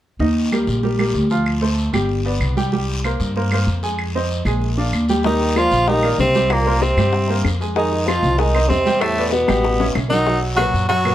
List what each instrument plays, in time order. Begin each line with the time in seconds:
0.19 upright bass D#2, grand piano D#3 D#4 D#5, long guiro
0.52 grand piano G3 G4 A#4, short guiro, claves
0.67 upright bass A#1, short guiro
0.83 grand piano G3 G4 A#4, long guiro
0.99 grand piano G3 G4 A#4, claves
1.14 upright bass D2, short guiro
1.30 grand piano F3 F4 F5, short guiro
1.46 long guiro, claves
1.62 grand piano A3 A4 C5
1.77 short guiro
1.93 upright bass G1, grand piano G3 G4 G5, short guiro, claves
2.09 long guiro
2.25 grand piano B3 B4 D5
2.40 upright bass C2, short guiro, claves
2.57 grand piano G3 G4 G5, short guiro
2.72 grand piano G3 G4 G5, long guiro
3.04 grand piano A#3 A#4 C5, short guiro, claves
3.20 upright bass G2, short guiro
3.36 grand piano A#3 A#4 C5, long guiro
3.52 grand piano A#3 A#4 C5, claves
3.67 upright bass F2, short guiro
3.83 grand piano G#3 G#4 G#5, short guiro
3.99 long guiro, claves
4.15 grand piano C4 C5 D#5
4.31 short guiro
4.45 upright bass A#1, grand piano G#3 G#4 G#5, short guiro, claves
4.62 long guiro
4.78 grand piano D4 D5 F5
4.92 upright bass D#2, short guiro, claves
5.09 grand piano G3 G4 G5, short guiro
5.23 bassoon D#3, grand piano G3 G4 G5, tenor saxophone D#4, high bongo, long guiro
5.41 high bongo
5.55 bassoon F3, grand piano A#3 A#4 D5, tenor saxophone F4, high bongo, short guiro, claves
5.71 upright bass A#1, short guiro
5.87 bassoon D#3, grand piano G3 G4 G5, tenor saxophone D#4, high bongo, long guiro
6.03 grand piano A#3 A#4 D5, high bongo, claves
6.18 upright bass C2, bassoon C3, tenor saxophone C4, high bongo, low bongo, short guiro
6.34 grand piano G3 G4 G5, high bongo, short guiro
6.50 bassoon A#2, tenor saxophone A#3, high bongo, long guiro, claves
6.66 grand piano A#3 A#4 C5, high bongo
6.82 bassoon C3, tenor saxophone C4, high bongo, short guiro
6.97 upright bass G2, grand piano G3 G4 G5, short guiro, claves
7.13 high bongo, long guiro
7.28 grand piano A#3 A#4 C5, high bongo
7.44 upright bass F2, high bongo, low bongo, short guiro, claves
7.60 grand piano G#3 G#4 G#5, high bongo, short guiro
7.76 bassoon D#3, grand piano G#3 G#4 G#5, tenor saxophone D#4, high bongo, long guiro
7.92 high bongo
8.06 bassoon F3, grand piano C4 C5 D#5, tenor saxophone F4, high bongo, short guiro, claves
8.23 upright bass C2, short guiro
8.38 bassoon D#3, grand piano G#3 G#4 G#5, tenor saxophone D#4, high bongo, long guiro
8.55 grand piano C4 C5 D#5, high bongo, claves
8.69 upright bass E2, bassoon C3, tenor saxophone C4, high bongo, low bongo, short guiro
8.85 grand piano G3 G4 G5, high bongo, short guiro
9.00 bassoon A2, tenor saxophone A3, high bongo, long guiro, claves
9.17 grand piano B3 B4 D5, high bongo
9.26 bassoon A2, tenor saxophone A3
9.31 bassoon B2, tenor saxophone B3, high bongo, short guiro
9.48 upright bass A1, grand piano G3 G4 G5, high bongo, short guiro, claves
9.64 high bongo, long guiro
9.80 grand piano C#4 C#5 E5, low bongo
9.95 upright bass B1, low bongo, short guiro, claves
10.09 bassoon D#3, grand piano F#3 F#4 F#5, tenor saxophone D#4, low bongo, short guiro
10.26 grand piano F#3 F#4 F#5, high bongo, long guiro
10.42 high bongo
10.55 grand piano A#2 A#4 B4, bassoon F#3, tenor saxophone F#4, high bongo, short guiro, claves
10.74 upright bass F#2, short guiro
10.88 bassoon F#3, grand piano F#3 F#4 F#5, tenor saxophone F#4, high bongo, long guiro
11.05 grand piano A#2 A#4 B4, high bongo, claves